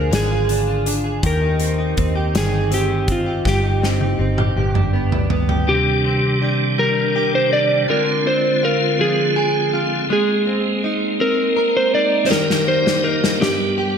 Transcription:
Already playing: fingered electric bass D2, clean electric guitar F3 D4 F4 G#4, electric slide guitar A#4
0.11 fingered electric bass G#1, clean electric guitar D3 G#4, electric slide guitar G#4, snare, closed hi-hat
0.30 clean electric guitar F4
0.49 clean electric guitar D4, closed hi-hat
0.68 clean electric guitar F4
0.86 clean electric guitar D4, closed hi-hat
1.04 clean electric guitar G#4
1.23 fingered electric bass D#2, clean electric guitar D#3 G4, electric slide guitar A#4, kick, closed hi-hat
1.41 clean electric guitar D#4
1.60 clean electric guitar C4, closed hi-hat
1.78 clean electric guitar D#4
1.97 fingered electric bass D#2, clean electric guitar C4, kick, closed hi-hat
2.15 clean electric guitar G4
2.34 fingered electric bass G1, clean electric guitar D#3, electric slide guitar G#4, snare, closed hi-hat
2.53 clean electric guitar D#4
2.71 clean electric guitar C4, electric slide guitar G4, closed hi-hat
2.89 clean electric guitar D#4
3.08 clean electric guitar C4, electric slide guitar F4, kick, closed hi-hat
3.26 clean electric guitar G4
3.45 fingered electric bass G1, clean electric guitar G2 G4, electric slide guitar G4, kick, snare
3.63 clean electric guitar D#4
3.82 clean electric guitar C4, snare
4.00 clean electric guitar D#4, high tom
4.19 fingered electric bass G1, clean electric guitar C4
4.38 clean electric guitar G4, mid tom
4.56 fingered electric bass G1, clean electric guitar G2 G4
4.74 clean electric guitar D4, mid tom
4.93 clean electric guitar B3
5.12 clean electric guitar D4, floor tom
5.30 clean electric guitar B3, floor tom
5.49 clean electric guitar G4, floor tom
5.67 tonewheel organ C3 D#3 G3 D4, clean electric guitar C3, electric slide guitar G4
6.05 clean electric guitar C4
6.42 clean electric guitar D4
6.78 clean electric guitar G3, electric slide guitar A#4
7.16 clean electric guitar G4
7.35 electric slide guitar C5
7.52 clean electric guitar D4, electric slide guitar D5
7.88 tonewheel organ D3 G#3 C4 F4, clean electric guitar D3, electric slide guitar A#4
8.26 clean electric guitar C4, electric slide guitar C5
8.63 clean electric guitar F4, electric slide guitar A#4
8.99 clean electric guitar F3, electric slide guitar G#4
9.36 clean electric guitar G#4
9.73 clean electric guitar F4
10.09 tonewheel organ G#3 A#3, clean electric guitar G#3
10.13 electric slide guitar G#4
10.47 clean electric guitar C4
10.84 clean electric guitar D#4
11.20 clean electric guitar C4, electric slide guitar A#4
11.57 clean electric guitar A#4
11.77 electric slide guitar C5
11.94 clean electric guitar D#4, electric slide guitar D5
12.26 tonewheel organ D#3 D#4 A#4, electric slide guitar C5
12.30 clean electric guitar D#3, tonewheel organ G4, electric slide guitar A#4, snare
12.50 snare
12.67 clean electric guitar A#3, electric slide guitar C5
12.87 snare
13.04 clean electric guitar D#4, electric slide guitar A#4
13.24 snare
13.40 clean electric guitar G2, tonewheel organ G3 B3 D4, electric slide guitar G4, snare
13.78 clean electric guitar G4

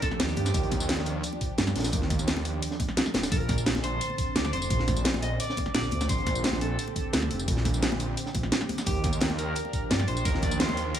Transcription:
Already playing: analog synth pad F3 D4 G4
0.02 clean electric guitar A4, kick, closed hi-hat, tambourine, muted conga
0.11 snare
0.20 detuned saw bass D#2, clean electric guitar G4, snare, closed hi-hat, tambourine
0.28 snare, tambourine
0.36 detuned saw bass G2, clean electric guitar G4, closed hi-hat, high conga
0.45 snare, tambourine, muted conga
0.54 detuned saw bass D#2, kick, closed hi-hat, tambourine
0.63 closed hi-hat
0.71 kick, snare, closed hi-hat, tambourine, high conga
0.80 tambourine
0.89 snare, closed hi-hat, tambourine
0.97 snare, high conga
1.06 closed hi-hat, tambourine
1.23 closed hi-hat, tambourine
1.33 muted conga
1.41 kick, closed hi-hat, tambourine
1.58 detuned saw bass G2, snare, closed hi-hat, tambourine
1.67 snare, tambourine, muted conga
1.76 detuned saw bass A#1, snare, closed hi-hat
1.80 snare, closed hi-hat
1.84 snare, closed hi-hat, tambourine
1.92 detuned saw bass D#2, kick, closed hi-hat, tambourine
2.02 snare
2.10 kick, snare, closed hi-hat, tambourine, high conga
2.19 tambourine, muted conga
2.27 snare, closed hi-hat, tambourine
2.37 high conga
2.45 closed hi-hat, tambourine
2.62 closed hi-hat, tambourine
2.71 snare
2.80 kick, closed hi-hat, tambourine, muted conga
2.88 snare
2.97 snare, closed hi-hat, tambourine
3.06 snare, tambourine
3.14 detuned saw bass D#1, snare, closed hi-hat, high conga
3.23 snare, closed hi-hat, tambourine, muted conga
3.32 detuned saw bass A#1, analog synth pad D3 C4 A5, clean electric guitar A#4, kick, closed hi-hat, tambourine
3.40 closed hi-hat
3.49 kick, snare, closed hi-hat, tambourine, high conga
3.58 tambourine
3.66 snare, closed hi-hat, tambourine
3.75 snare, high conga
3.84 clean electric guitar C5, closed hi-hat, tambourine
4.01 closed hi-hat, tambourine
4.10 muted conga
4.18 kick, closed hi-hat, tambourine
4.35 detuned saw bass D2, clean electric guitar D5, snare, closed hi-hat, tambourine
4.44 snare, tambourine, muted conga
4.53 detuned saw bass F1, clean electric guitar C5, closed hi-hat
4.62 tambourine
4.70 detuned saw bass A#1, kick, closed hi-hat, tambourine
4.79 snare
4.88 kick, snare, closed hi-hat, tambourine, high conga
4.96 tambourine, muted conga
5.05 snare, closed hi-hat, tambourine
5.14 high conga
5.22 clean electric guitar D#5, closed hi-hat, tambourine
5.40 clean electric guitar D5, closed hi-hat, tambourine
5.49 snare
5.57 kick, closed hi-hat, tambourine, muted conga
5.66 snare
5.74 detuned saw bass A#1, clean electric guitar D5, snare, closed hi-hat, tambourine
5.83 snare, tambourine
5.91 detuned saw bass D2, closed hi-hat, high conga
6.01 snare, tambourine, muted conga
6.09 detuned saw bass A#1, analog synth pad G4, clean electric guitar C5, kick, closed hi-hat, tambourine
6.18 closed hi-hat
6.27 kick, snare, closed hi-hat, tambourine, high conga
6.35 tambourine
6.44 snare, closed hi-hat, tambourine
6.53 snare, high conga
6.61 clean electric guitar A4, closed hi-hat, tambourine
6.79 closed hi-hat, tambourine
6.88 muted conga
6.96 kick, closed hi-hat, tambourine
7.13 detuned saw bass D2, snare, closed hi-hat, tambourine
7.22 snare, tambourine, muted conga
7.31 detuned saw bass F1, closed hi-hat
7.39 tambourine
7.48 detuned saw bass A#1, kick, closed hi-hat, tambourine
7.57 snare
7.65 kick, snare, closed hi-hat, tambourine, high conga
7.74 tambourine, muted conga
7.82 snare, closed hi-hat, tambourine
7.92 high conga
8.00 closed hi-hat, tambourine
8.17 closed hi-hat, tambourine
8.26 snare
8.35 detuned saw bass A#1, kick, closed hi-hat, tambourine, muted conga
8.43 snare
8.52 snare, closed hi-hat, tambourine
8.60 snare, tambourine
8.69 closed hi-hat, high conga
8.78 snare, tambourine, muted conga
8.86 detuned saw bass D#2, analog synth pad F3 D4, clean electric guitar G4, kick, closed hi-hat, tambourine
8.95 closed hi-hat
9.04 kick, snare, closed hi-hat, tambourine, high conga
9.13 tambourine
9.21 snare, closed hi-hat, tambourine
9.30 snare, high conga
9.38 clean electric guitar A#4, closed hi-hat, tambourine
9.55 closed hi-hat, tambourine
9.65 muted conga
9.73 kick, closed hi-hat, tambourine
9.90 detuned saw bass G2, clean electric guitar D5, snare, closed hi-hat, tambourine
9.99 snare, tambourine, muted conga
10.08 detuned saw bass A#1, clean electric guitar C5, closed hi-hat
10.17 tambourine
10.25 detuned saw bass D#2, clean electric guitar A#4, kick, closed hi-hat, tambourine
10.34 snare
10.42 clean electric guitar D5, kick, snare, closed hi-hat, tambourine, high conga
10.51 tambourine, muted conga
10.60 clean electric guitar C5, snare, closed hi-hat, tambourine
10.69 high conga
10.77 closed hi-hat, tambourine
10.94 clean electric guitar A#4, closed hi-hat, tambourine

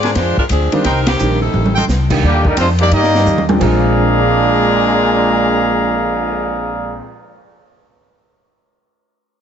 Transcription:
Already playing: upright bass G#2, saxophone section C4 F4 G#4 D5
0.03 trumpet section D4 A#4 C5 G#5, snare, ride
0.15 upright bass F2, saxophone section G#3 D4 F4 C5, kick, snare, ride
0.37 saxophone section G#3 D4 F4 A#4, muted upright bass stroke, kick
0.49 upright bass D2, saxophone section F3 C4 D4 G#4, kick, hi-hat pedal, ride
0.72 grand piano D#3 G3 A#3 C4 D4, saxophone section G#3 D4 F4 C5, ride
0.84 upright bass C2, saxophone section G3 C4 D#4 A#4, trumpet section D#4 A#4 C5 G5, kick, snare, ride
1.07 saxophone section D#3 A#3 C4 G4, snare, ride
1.19 upright bass A#1, grand piano D#3 G3 A#3 C4 D4, hi-hat pedal
1.40 trombone section C3 D#3 A3, saxophone section G3 C4 D#4 A4
1.53 upright bass A1, high tom
1.66 high tom
1.75 trumpet section F4 A4 D#5 G5, high tom
1.88 upright bass C2, snare, hi-hat pedal
2.10 grand piano D#3 G3 A#3 D4 G4, kick, crash
2.23 upright bass D#2, trombone section A#2 D3 G3, trumpet section A#3 D4 G4, kick
2.45 trombone section D3 G3 A#3, trumpet section G3 D4 D#4 A#4, kick
2.57 upright bass F2, trumpet section G#3 D4 F4 C5, trombone section C4, kick, hi-hat pedal, ride
2.79 trombone section G3 A#3 D4, trumpet section A#3 D#4 G4 D5, ride
2.91 upright bass G2, trombone section G3 A#3 D#4, trumpet section A#3 G4 D5 D#5, kick, ride
3.03 snare
3.15 snare
3.26 upright bass D#2, hi-hat pedal, high tom
3.38 high tom
3.49 grand piano A#2 F3 G#3 C4 D4 G5, high tom
3.59 upright bass A#1, grand piano A#2 F3 G#3 C4 D4 G#4, trombone section A#2 F3 G#3 D4, trumpet section G#4 D5 F5, kick, crash
3.63 trumpet section A#5
3.83 cymbal swell
3.95 grand piano A#4
4.02 grand piano D5
4.19 grand piano A#5
4.29 grand piano D6
4.40 grand piano G6
4.51 grand piano A#6

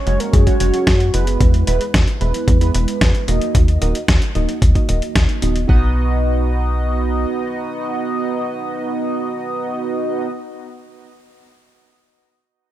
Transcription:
Already playing: soft synth lead C#5
0.07 analog synth bass F#1, analog polysynth G#3 C#4 F#4 C#5, closed hi-hat
0.20 soft synth lead A#4, closed hi-hat
0.33 analog synth bass F#2, soft synth lead G#4, kick, closed hi-hat
0.47 analog polysynth G#3 C#4 F#4 C#5, soft synth lead F#4, kick, closed hi-hat
0.60 analog synth bass F#1, analog polysynth G#3 C#4 F#4 C#5, closed hi-hat
0.74 closed hi-hat
0.87 analog synth bass F#2, soft synth lead F#4, kick, snare, closed hi-hat
1.00 closed hi-hat
1.14 analog synth bass F#1, analog polysynth G#3 B3 E4 B4, closed hi-hat
1.27 closed hi-hat
1.41 analog synth bass E2, kick, closed hi-hat
1.54 closed hi-hat
1.67 analog synth bass E1, analog polysynth G#3 B3 E4 B4, closed hi-hat
1.81 closed hi-hat
1.94 analog synth bass E2, kick, snare, closed hi-hat
2.08 closed hi-hat
2.21 analog synth bass E1, analog polysynth G#3 B3 E4 B4, closed hi-hat
2.34 closed hi-hat
2.48 analog synth bass E2, kick, closed hi-hat
2.61 analog polysynth G#3 B3 E4 B4, closed hi-hat
2.74 analog synth bass E1, analog polysynth G#3 B3 E4 B4, closed hi-hat
2.88 closed hi-hat
3.01 analog synth bass E2, kick, snare, closed hi-hat
3.15 closed hi-hat
3.28 analog synth bass E1, analog polysynth A#3 D#4 F#4 D#5, closed hi-hat
3.42 closed hi-hat
3.55 analog synth bass D#2, kick, closed hi-hat
3.68 closed hi-hat
3.81 analog synth bass D#1, analog polysynth A#3 D#4 F#4 D#5, closed hi-hat
3.95 closed hi-hat
4.08 analog synth bass D#2, kick, snare, closed hi-hat
4.22 closed hi-hat
4.35 analog synth bass D#1, analog polysynth A#3 D#4 F#4 D#5, closed hi-hat
4.49 closed hi-hat
4.62 analog synth bass D#2, kick, closed hi-hat
4.75 analog polysynth A#3 D#4 F#4 D#5, kick, closed hi-hat
4.89 analog synth bass D#1, analog polysynth A#3 D#4 F#4 D#5, closed hi-hat
5.02 closed hi-hat
5.15 analog synth bass D#2, kick, snare, closed hi-hat
5.29 closed hi-hat
5.42 analog synth bass D#1, analog polysynth B3 D#4 F#4 D#5, closed hi-hat
5.56 closed hi-hat
5.69 analog synth bass B1, analog polysynth B3 D#4 F#4 D#5, kick

